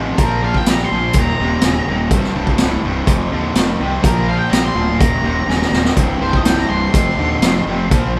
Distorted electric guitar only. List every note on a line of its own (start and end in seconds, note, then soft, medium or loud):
0.00 0.16 F2 medium
0.00 0.16 C3 medium
0.18 0.40 A#2 medium
0.18 0.40 F3 medium
0.42 0.64 A#2 medium
0.42 0.64 F3 medium
0.67 0.88 A#2 medium
0.67 0.89 G3 medium
0.91 1.13 A#2 medium
0.91 1.13 F3 medium
1.15 1.37 D#2 medium
1.15 1.37 A#2 medium
1.40 1.61 D#2 medium
1.40 1.61 C3 medium
1.64 1.85 D#2 medium
1.64 1.85 C#3 medium
1.88 2.09 D#2 medium
1.88 2.09 A#2 medium
2.11 2.33 C2 medium
2.11 2.33 G2 loud
2.35 2.57 C2 medium
2.35 2.57 G2 medium
2.60 2.81 C2 medium
2.60 2.81 A2 loud
2.84 3.05 C2 medium
2.84 3.05 G2 medium
3.07 3.29 F2 medium
3.07 3.29 C3 medium
3.31 3.53 F2 medium
3.31 3.53 D3 medium
3.54 3.77 F2 medium
3.54 3.77 D#3 medium
3.79 4.01 F2 medium
3.79 4.02 C3 medium
4.03 4.25 A#2 medium
4.03 4.26 F3 medium
4.29 4.50 A#2 medium
4.29 4.50 F3 medium
4.52 4.74 A#2 medium
4.52 4.74 G3 loud
4.76 4.98 A#2 medium
4.76 4.98 F3 medium
5.00 5.22 D#2 medium
5.00 5.22 A#2 medium
5.23 5.46 D#2 medium
5.23 5.46 C3 medium
5.49 5.70 D#2 medium
5.49 5.71 C#3 medium
5.74 5.95 D#2 medium
5.74 5.95 A#2 medium
5.97 6.19 C2 medium
5.97 6.19 G2 loud
6.20 6.43 C2 medium
6.20 6.42 G2 medium
6.44 6.66 C2 medium
6.44 6.67 A2 loud
6.68 6.91 C2 medium
6.68 6.91 G2 medium
6.93 7.15 F2 medium
6.93 7.16 C3 medium
7.17 7.40 F2 medium
7.17 7.40 D3 medium
7.43 7.65 F2 medium
7.43 7.64 D#3 medium
7.67 7.89 F2 medium
7.67 7.89 C3 medium
7.91 8.13 A#2 medium
7.91 8.13 F3 loud
8.16 8.20 A#2 medium